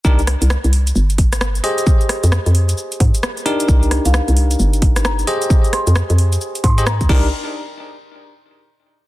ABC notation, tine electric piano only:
X:1
M:4/4
L:1/16
Q:"Swing 16ths" 1/4=132
K:Cm
V:1 name="Tine electric piano"
[DEGB] z12 z [GAce]2- | [GAce]12- [GAce]2 [DEGB]2- | [DEGB]12- [DEGB]2 [GAce]2- | [GAce]8- [GAce]3 [GAce] z2 [DEGB]2 |
z16 |]